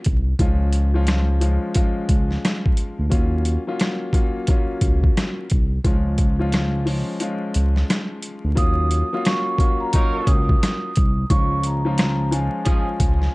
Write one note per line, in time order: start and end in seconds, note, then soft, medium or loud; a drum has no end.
0.04 0.34 C2 medium
0.04 kick medium
0.04 closed hi-hat medium
0.39 1.58 C#2 loud
0.39 0.89 F3 medium
0.39 0.89 G#3 medium
0.39 0.90 C#4 medium
0.39 0.90 F4 loud
0.39 kick loud
0.39 closed hi-hat medium
0.72 closed hi-hat medium
0.94 1.38 F3 medium
0.94 1.39 G#3 medium
0.94 1.39 C#4 medium
0.94 1.39 F4 loud
1.07 cross-stick medium
1.07 snare loud
1.07 closed hi-hat medium
1.41 1.73 F3 medium
1.41 1.73 G#3 medium
1.41 1.73 C#4 medium
1.41 1.74 F4 medium
1.41 closed hi-hat medium
1.74 3.03 F3 medium
1.74 3.03 G#3 medium
1.74 3.03 C#4 medium
1.74 3.04 F4 loud
1.74 kick medium
1.74 closed hi-hat loud
2.09 2.38 C#2 medium
2.09 kick medium
2.09 closed hi-hat medium
2.31 snare soft
2.45 cross-stick medium
2.45 snare loud
2.45 closed hi-hat loud
2.66 kick medium
2.77 closed hi-hat medium
2.99 3.10 D2 medium
3.10 3.57 D#2 loud
3.10 3.61 F#3 loud
3.10 3.61 A#3 medium
3.10 3.61 C#4 medium
3.10 3.61 F4 loud
3.10 kick loud
3.10 closed hi-hat medium
3.45 closed hi-hat medium
3.67 4.11 F#3 loud
3.67 4.11 A#3 medium
3.67 4.11 C#4 medium
3.67 4.12 F4 loud
3.79 cross-stick medium
3.79 snare loud
3.79 closed hi-hat medium
4.13 4.45 F#3 medium
4.13 4.46 A#3 medium
4.13 4.46 C#4 medium
4.13 4.46 F4 loud
4.13 kick medium
4.13 closed hi-hat medium
4.47 5.44 F#3 medium
4.47 5.44 A#3 medium
4.47 5.45 C#4 medium
4.47 5.45 F4 loud
4.47 kick loud
4.47 closed hi-hat medium
4.81 5.10 C#2 medium
4.81 kick loud
4.81 closed hi-hat medium
5.04 kick medium
5.17 cross-stick medium
5.17 snare loud
5.17 closed hi-hat loud
5.50 5.79 C2 loud
5.50 kick medium
5.50 closed hi-hat medium
5.84 7.04 C#2 loud
5.84 6.34 F3 medium
5.84 6.35 G#3 medium
5.84 6.35 C#4 medium
5.84 6.35 F4 loud
5.84 kick loud
5.84 closed hi-hat medium
6.18 kick medium
6.18 closed hi-hat medium
6.39 6.84 F3 medium
6.39 6.84 G#3 medium
6.39 6.84 C#4 medium
6.39 6.84 F4 loud
6.52 cross-stick medium
6.52 snare loud
6.52 closed hi-hat medium
6.86 7.18 F3 medium
6.86 7.18 G#3 medium
6.86 7.19 C#4 medium
6.86 7.19 F4 medium
6.86 open hi-hat soft
7.20 8.48 F3 medium
7.20 8.49 G#3 medium
7.20 8.49 C#4 medium
7.20 8.49 F4 loud
7.20 closed hi-hat medium
7.54 7.84 C#2 medium
7.54 closed hi-hat medium
7.76 snare soft
7.90 cross-stick medium
7.90 snare loud
7.90 closed hi-hat loud
8.23 closed hi-hat medium
8.45 8.55 D2 medium
8.55 9.03 D#2 loud
8.55 9.06 F#3 loud
8.55 9.06 A#3 medium
8.55 9.07 C#4 medium
8.55 9.07 F4 loud
8.55 8.88 D#6 loud
8.55 kick loud
8.55 closed hi-hat medium
8.91 closed hi-hat medium
9.13 9.57 F#3 loud
9.13 9.57 A#3 medium
9.13 9.57 C#4 medium
9.13 9.57 F4 loud
9.25 9.77 C#6 medium
9.25 cross-stick loud
9.25 snare loud
9.25 closed hi-hat medium
9.58 9.91 F#3 loud
9.58 9.91 A#3 medium
9.58 9.92 C#4 medium
9.58 9.92 F4 loud
9.58 kick loud
9.58 closed hi-hat medium
9.80 9.92 A#5 medium
9.93 10.90 F#3 loud
9.93 10.41 F#3 loud
9.93 10.90 A#3 medium
9.93 10.90 C#4 medium
9.93 10.41 D#4 loud
9.93 10.90 F4 loud
9.93 10.41 A#4 loud
9.93 10.24 C#6 medium
9.93 kick loud
9.93 closed hi-hat loud
10.27 10.56 C#2 medium
10.27 11.26 D#6 medium
10.27 kick medium
10.27 closed hi-hat medium
10.49 kick medium
10.63 cross-stick medium
10.63 snare loud
10.63 closed hi-hat loud
10.96 11.25 C2 loud
10.96 kick loud
10.96 closed hi-hat medium
11.30 12.49 C#2 loud
11.30 11.80 F3 medium
11.30 11.80 G#3 medium
11.30 11.80 C#4 medium
11.30 11.81 F4 loud
11.30 11.61 C#6 loud
11.30 kick loud
11.30 closed hi-hat medium
11.63 12.29 A#5 medium
11.63 closed hi-hat medium
11.85 12.29 F3 loud
11.85 12.29 G#3 medium
11.85 12.30 C#4 medium
11.85 12.30 F4 loud
11.98 cross-stick loud
11.98 snare loud
11.98 closed hi-hat medium
12.31 12.64 F3 loud
12.31 12.64 G#3 medium
12.31 12.64 C#4 medium
12.31 12.64 F4 loud
12.31 13.35 G#5 medium
12.31 closed hi-hat medium
12.65 12.87 F3 loud
12.65 13.35 F3 medium
12.65 13.35 G#3 medium
12.65 12.87 C#4 loud
12.65 13.35 C#4 medium
12.65 13.35 F4 loud
12.65 12.87 G#4 loud
12.65 kick loud
12.65 closed hi-hat medium
13.00 13.28 C#2 medium
13.00 kick medium
13.00 closed hi-hat medium
13.22 snare soft